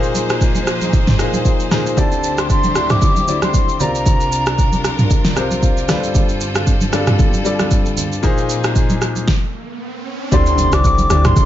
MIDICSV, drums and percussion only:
0, 0, Header, 1, 2, 480
1, 0, Start_track
1, 0, Key_signature, -1, "minor"
1, 0, Tempo, 521739
1, 1816, Time_signature, 4, 2, 24, 8
1, 10538, End_track
2, 0, Start_track
2, 0, Title_t, "Drums"
2, 30, Note_on_c, 9, 82, 46
2, 122, Note_off_c, 9, 82, 0
2, 133, Note_on_c, 9, 63, 53
2, 139, Note_on_c, 9, 82, 85
2, 225, Note_off_c, 9, 63, 0
2, 231, Note_off_c, 9, 82, 0
2, 271, Note_on_c, 9, 82, 51
2, 276, Note_on_c, 9, 37, 95
2, 363, Note_off_c, 9, 82, 0
2, 368, Note_off_c, 9, 37, 0
2, 377, Note_on_c, 9, 36, 94
2, 379, Note_on_c, 9, 82, 75
2, 469, Note_off_c, 9, 36, 0
2, 471, Note_off_c, 9, 82, 0
2, 505, Note_on_c, 9, 63, 79
2, 508, Note_on_c, 9, 82, 58
2, 597, Note_off_c, 9, 63, 0
2, 600, Note_off_c, 9, 82, 0
2, 617, Note_on_c, 9, 37, 89
2, 618, Note_on_c, 9, 82, 89
2, 709, Note_off_c, 9, 37, 0
2, 710, Note_off_c, 9, 82, 0
2, 747, Note_on_c, 9, 63, 64
2, 748, Note_on_c, 9, 82, 53
2, 839, Note_off_c, 9, 63, 0
2, 840, Note_off_c, 9, 82, 0
2, 855, Note_on_c, 9, 64, 77
2, 857, Note_on_c, 9, 36, 114
2, 858, Note_on_c, 9, 82, 68
2, 947, Note_off_c, 9, 64, 0
2, 949, Note_off_c, 9, 36, 0
2, 950, Note_off_c, 9, 82, 0
2, 987, Note_on_c, 9, 36, 93
2, 988, Note_on_c, 9, 38, 68
2, 989, Note_on_c, 9, 63, 71
2, 989, Note_on_c, 9, 82, 51
2, 990, Note_on_c, 9, 45, 96
2, 1079, Note_off_c, 9, 36, 0
2, 1080, Note_off_c, 9, 38, 0
2, 1081, Note_off_c, 9, 63, 0
2, 1081, Note_off_c, 9, 82, 0
2, 1082, Note_off_c, 9, 45, 0
2, 1096, Note_on_c, 9, 37, 90
2, 1097, Note_on_c, 9, 82, 87
2, 1188, Note_off_c, 9, 37, 0
2, 1189, Note_off_c, 9, 82, 0
2, 1227, Note_on_c, 9, 63, 74
2, 1230, Note_on_c, 9, 82, 64
2, 1319, Note_off_c, 9, 63, 0
2, 1322, Note_off_c, 9, 82, 0
2, 1335, Note_on_c, 9, 36, 90
2, 1335, Note_on_c, 9, 82, 75
2, 1427, Note_off_c, 9, 36, 0
2, 1427, Note_off_c, 9, 82, 0
2, 1470, Note_on_c, 9, 82, 50
2, 1562, Note_off_c, 9, 82, 0
2, 1575, Note_on_c, 9, 64, 70
2, 1577, Note_on_c, 9, 37, 95
2, 1577, Note_on_c, 9, 38, 69
2, 1578, Note_on_c, 9, 82, 100
2, 1667, Note_off_c, 9, 64, 0
2, 1669, Note_off_c, 9, 37, 0
2, 1669, Note_off_c, 9, 38, 0
2, 1670, Note_off_c, 9, 82, 0
2, 1714, Note_on_c, 9, 82, 62
2, 1806, Note_off_c, 9, 82, 0
2, 1816, Note_on_c, 9, 36, 112
2, 1816, Note_on_c, 9, 64, 75
2, 1816, Note_on_c, 9, 82, 75
2, 1908, Note_off_c, 9, 36, 0
2, 1908, Note_off_c, 9, 64, 0
2, 1908, Note_off_c, 9, 82, 0
2, 1948, Note_on_c, 9, 82, 44
2, 2040, Note_off_c, 9, 82, 0
2, 2057, Note_on_c, 9, 82, 92
2, 2149, Note_off_c, 9, 82, 0
2, 2187, Note_on_c, 9, 82, 53
2, 2192, Note_on_c, 9, 37, 98
2, 2279, Note_off_c, 9, 82, 0
2, 2284, Note_off_c, 9, 37, 0
2, 2296, Note_on_c, 9, 36, 92
2, 2297, Note_on_c, 9, 82, 74
2, 2388, Note_off_c, 9, 36, 0
2, 2389, Note_off_c, 9, 82, 0
2, 2425, Note_on_c, 9, 82, 56
2, 2427, Note_on_c, 9, 63, 77
2, 2517, Note_off_c, 9, 82, 0
2, 2519, Note_off_c, 9, 63, 0
2, 2534, Note_on_c, 9, 37, 90
2, 2534, Note_on_c, 9, 82, 90
2, 2626, Note_off_c, 9, 37, 0
2, 2626, Note_off_c, 9, 82, 0
2, 2666, Note_on_c, 9, 82, 52
2, 2668, Note_on_c, 9, 37, 88
2, 2668, Note_on_c, 9, 45, 73
2, 2668, Note_on_c, 9, 63, 64
2, 2758, Note_off_c, 9, 82, 0
2, 2760, Note_off_c, 9, 37, 0
2, 2760, Note_off_c, 9, 45, 0
2, 2760, Note_off_c, 9, 63, 0
2, 2776, Note_on_c, 9, 36, 123
2, 2777, Note_on_c, 9, 64, 78
2, 2777, Note_on_c, 9, 82, 71
2, 2868, Note_off_c, 9, 36, 0
2, 2869, Note_off_c, 9, 64, 0
2, 2869, Note_off_c, 9, 82, 0
2, 2909, Note_on_c, 9, 82, 51
2, 2911, Note_on_c, 9, 63, 70
2, 3001, Note_off_c, 9, 82, 0
2, 3003, Note_off_c, 9, 63, 0
2, 3017, Note_on_c, 9, 82, 90
2, 3109, Note_off_c, 9, 82, 0
2, 3147, Note_on_c, 9, 37, 86
2, 3149, Note_on_c, 9, 82, 62
2, 3151, Note_on_c, 9, 63, 75
2, 3239, Note_off_c, 9, 37, 0
2, 3241, Note_off_c, 9, 82, 0
2, 3243, Note_off_c, 9, 63, 0
2, 3255, Note_on_c, 9, 36, 85
2, 3255, Note_on_c, 9, 82, 76
2, 3347, Note_off_c, 9, 36, 0
2, 3347, Note_off_c, 9, 82, 0
2, 3392, Note_on_c, 9, 82, 49
2, 3484, Note_off_c, 9, 82, 0
2, 3497, Note_on_c, 9, 64, 72
2, 3497, Note_on_c, 9, 82, 102
2, 3589, Note_off_c, 9, 64, 0
2, 3589, Note_off_c, 9, 82, 0
2, 3634, Note_on_c, 9, 82, 62
2, 3726, Note_off_c, 9, 82, 0
2, 3736, Note_on_c, 9, 36, 112
2, 3737, Note_on_c, 9, 82, 78
2, 3738, Note_on_c, 9, 64, 77
2, 3828, Note_off_c, 9, 36, 0
2, 3829, Note_off_c, 9, 82, 0
2, 3830, Note_off_c, 9, 64, 0
2, 3868, Note_on_c, 9, 82, 45
2, 3960, Note_off_c, 9, 82, 0
2, 3977, Note_on_c, 9, 82, 93
2, 4069, Note_off_c, 9, 82, 0
2, 4105, Note_on_c, 9, 82, 54
2, 4111, Note_on_c, 9, 37, 100
2, 4197, Note_off_c, 9, 82, 0
2, 4203, Note_off_c, 9, 37, 0
2, 4217, Note_on_c, 9, 36, 91
2, 4218, Note_on_c, 9, 82, 73
2, 4309, Note_off_c, 9, 36, 0
2, 4310, Note_off_c, 9, 82, 0
2, 4346, Note_on_c, 9, 63, 82
2, 4348, Note_on_c, 9, 82, 58
2, 4438, Note_off_c, 9, 63, 0
2, 4440, Note_off_c, 9, 82, 0
2, 4456, Note_on_c, 9, 37, 88
2, 4457, Note_on_c, 9, 82, 86
2, 4548, Note_off_c, 9, 37, 0
2, 4549, Note_off_c, 9, 82, 0
2, 4588, Note_on_c, 9, 63, 67
2, 4588, Note_on_c, 9, 82, 51
2, 4590, Note_on_c, 9, 45, 72
2, 4680, Note_off_c, 9, 63, 0
2, 4680, Note_off_c, 9, 82, 0
2, 4682, Note_off_c, 9, 45, 0
2, 4697, Note_on_c, 9, 36, 117
2, 4697, Note_on_c, 9, 64, 77
2, 4697, Note_on_c, 9, 82, 70
2, 4789, Note_off_c, 9, 36, 0
2, 4789, Note_off_c, 9, 64, 0
2, 4789, Note_off_c, 9, 82, 0
2, 4827, Note_on_c, 9, 38, 64
2, 4827, Note_on_c, 9, 82, 50
2, 4830, Note_on_c, 9, 63, 72
2, 4919, Note_off_c, 9, 38, 0
2, 4919, Note_off_c, 9, 82, 0
2, 4922, Note_off_c, 9, 63, 0
2, 4935, Note_on_c, 9, 37, 92
2, 4936, Note_on_c, 9, 82, 93
2, 5027, Note_off_c, 9, 37, 0
2, 5028, Note_off_c, 9, 82, 0
2, 5068, Note_on_c, 9, 63, 77
2, 5071, Note_on_c, 9, 82, 62
2, 5160, Note_off_c, 9, 63, 0
2, 5163, Note_off_c, 9, 82, 0
2, 5176, Note_on_c, 9, 36, 91
2, 5177, Note_on_c, 9, 82, 78
2, 5268, Note_off_c, 9, 36, 0
2, 5269, Note_off_c, 9, 82, 0
2, 5313, Note_on_c, 9, 82, 51
2, 5405, Note_off_c, 9, 82, 0
2, 5416, Note_on_c, 9, 64, 76
2, 5417, Note_on_c, 9, 37, 99
2, 5417, Note_on_c, 9, 38, 70
2, 5418, Note_on_c, 9, 82, 103
2, 5508, Note_off_c, 9, 64, 0
2, 5509, Note_off_c, 9, 37, 0
2, 5509, Note_off_c, 9, 38, 0
2, 5510, Note_off_c, 9, 82, 0
2, 5552, Note_on_c, 9, 82, 64
2, 5644, Note_off_c, 9, 82, 0
2, 5655, Note_on_c, 9, 82, 79
2, 5656, Note_on_c, 9, 36, 116
2, 5657, Note_on_c, 9, 64, 75
2, 5747, Note_off_c, 9, 82, 0
2, 5748, Note_off_c, 9, 36, 0
2, 5749, Note_off_c, 9, 64, 0
2, 5786, Note_on_c, 9, 82, 47
2, 5878, Note_off_c, 9, 82, 0
2, 5895, Note_on_c, 9, 82, 88
2, 5987, Note_off_c, 9, 82, 0
2, 6024, Note_on_c, 9, 82, 55
2, 6030, Note_on_c, 9, 37, 100
2, 6116, Note_off_c, 9, 82, 0
2, 6122, Note_off_c, 9, 37, 0
2, 6135, Note_on_c, 9, 82, 72
2, 6136, Note_on_c, 9, 36, 92
2, 6227, Note_off_c, 9, 82, 0
2, 6228, Note_off_c, 9, 36, 0
2, 6264, Note_on_c, 9, 82, 59
2, 6267, Note_on_c, 9, 63, 77
2, 6356, Note_off_c, 9, 82, 0
2, 6359, Note_off_c, 9, 63, 0
2, 6373, Note_on_c, 9, 37, 93
2, 6374, Note_on_c, 9, 82, 89
2, 6465, Note_off_c, 9, 37, 0
2, 6466, Note_off_c, 9, 82, 0
2, 6505, Note_on_c, 9, 63, 65
2, 6505, Note_on_c, 9, 82, 52
2, 6506, Note_on_c, 9, 37, 93
2, 6507, Note_on_c, 9, 45, 75
2, 6597, Note_off_c, 9, 63, 0
2, 6597, Note_off_c, 9, 82, 0
2, 6598, Note_off_c, 9, 37, 0
2, 6599, Note_off_c, 9, 45, 0
2, 6615, Note_on_c, 9, 64, 76
2, 6616, Note_on_c, 9, 36, 127
2, 6616, Note_on_c, 9, 82, 70
2, 6707, Note_off_c, 9, 64, 0
2, 6708, Note_off_c, 9, 36, 0
2, 6708, Note_off_c, 9, 82, 0
2, 6748, Note_on_c, 9, 82, 52
2, 6749, Note_on_c, 9, 63, 72
2, 6840, Note_off_c, 9, 82, 0
2, 6841, Note_off_c, 9, 63, 0
2, 6855, Note_on_c, 9, 82, 88
2, 6947, Note_off_c, 9, 82, 0
2, 6986, Note_on_c, 9, 37, 90
2, 6987, Note_on_c, 9, 63, 72
2, 6988, Note_on_c, 9, 82, 61
2, 7078, Note_off_c, 9, 37, 0
2, 7079, Note_off_c, 9, 63, 0
2, 7080, Note_off_c, 9, 82, 0
2, 7092, Note_on_c, 9, 82, 77
2, 7094, Note_on_c, 9, 36, 95
2, 7184, Note_off_c, 9, 82, 0
2, 7186, Note_off_c, 9, 36, 0
2, 7229, Note_on_c, 9, 82, 47
2, 7321, Note_off_c, 9, 82, 0
2, 7335, Note_on_c, 9, 64, 74
2, 7336, Note_on_c, 9, 82, 103
2, 7427, Note_off_c, 9, 64, 0
2, 7428, Note_off_c, 9, 82, 0
2, 7473, Note_on_c, 9, 82, 64
2, 7565, Note_off_c, 9, 82, 0
2, 7575, Note_on_c, 9, 82, 75
2, 7576, Note_on_c, 9, 36, 114
2, 7577, Note_on_c, 9, 64, 73
2, 7667, Note_off_c, 9, 82, 0
2, 7668, Note_off_c, 9, 36, 0
2, 7669, Note_off_c, 9, 64, 0
2, 7706, Note_on_c, 9, 82, 46
2, 7798, Note_off_c, 9, 82, 0
2, 7816, Note_on_c, 9, 82, 91
2, 7908, Note_off_c, 9, 82, 0
2, 7946, Note_on_c, 9, 82, 58
2, 7951, Note_on_c, 9, 37, 101
2, 8038, Note_off_c, 9, 82, 0
2, 8043, Note_off_c, 9, 37, 0
2, 8055, Note_on_c, 9, 36, 92
2, 8056, Note_on_c, 9, 82, 75
2, 8147, Note_off_c, 9, 36, 0
2, 8148, Note_off_c, 9, 82, 0
2, 8185, Note_on_c, 9, 63, 79
2, 8185, Note_on_c, 9, 82, 58
2, 8277, Note_off_c, 9, 63, 0
2, 8277, Note_off_c, 9, 82, 0
2, 8295, Note_on_c, 9, 37, 87
2, 8295, Note_on_c, 9, 82, 86
2, 8387, Note_off_c, 9, 37, 0
2, 8387, Note_off_c, 9, 82, 0
2, 8425, Note_on_c, 9, 82, 53
2, 8426, Note_on_c, 9, 63, 64
2, 8517, Note_off_c, 9, 82, 0
2, 8518, Note_off_c, 9, 63, 0
2, 8533, Note_on_c, 9, 38, 86
2, 8535, Note_on_c, 9, 36, 109
2, 8625, Note_off_c, 9, 38, 0
2, 8627, Note_off_c, 9, 36, 0
2, 9495, Note_on_c, 9, 36, 119
2, 9495, Note_on_c, 9, 82, 83
2, 9496, Note_on_c, 9, 64, 80
2, 9587, Note_off_c, 9, 36, 0
2, 9587, Note_off_c, 9, 82, 0
2, 9588, Note_off_c, 9, 64, 0
2, 9626, Note_on_c, 9, 82, 48
2, 9718, Note_off_c, 9, 82, 0
2, 9733, Note_on_c, 9, 63, 56
2, 9736, Note_on_c, 9, 82, 92
2, 9825, Note_off_c, 9, 63, 0
2, 9828, Note_off_c, 9, 82, 0
2, 9865, Note_on_c, 9, 82, 56
2, 9870, Note_on_c, 9, 37, 99
2, 9957, Note_off_c, 9, 82, 0
2, 9962, Note_off_c, 9, 37, 0
2, 9975, Note_on_c, 9, 36, 98
2, 9976, Note_on_c, 9, 82, 80
2, 10067, Note_off_c, 9, 36, 0
2, 10068, Note_off_c, 9, 82, 0
2, 10104, Note_on_c, 9, 63, 81
2, 10104, Note_on_c, 9, 82, 61
2, 10196, Note_off_c, 9, 63, 0
2, 10196, Note_off_c, 9, 82, 0
2, 10213, Note_on_c, 9, 37, 92
2, 10213, Note_on_c, 9, 82, 89
2, 10305, Note_off_c, 9, 37, 0
2, 10305, Note_off_c, 9, 82, 0
2, 10345, Note_on_c, 9, 63, 69
2, 10346, Note_on_c, 9, 82, 57
2, 10348, Note_on_c, 9, 37, 97
2, 10348, Note_on_c, 9, 45, 75
2, 10437, Note_off_c, 9, 63, 0
2, 10438, Note_off_c, 9, 82, 0
2, 10440, Note_off_c, 9, 37, 0
2, 10440, Note_off_c, 9, 45, 0
2, 10453, Note_on_c, 9, 64, 82
2, 10455, Note_on_c, 9, 36, 127
2, 10455, Note_on_c, 9, 82, 71
2, 10538, Note_off_c, 9, 36, 0
2, 10538, Note_off_c, 9, 64, 0
2, 10538, Note_off_c, 9, 82, 0
2, 10538, End_track
0, 0, End_of_file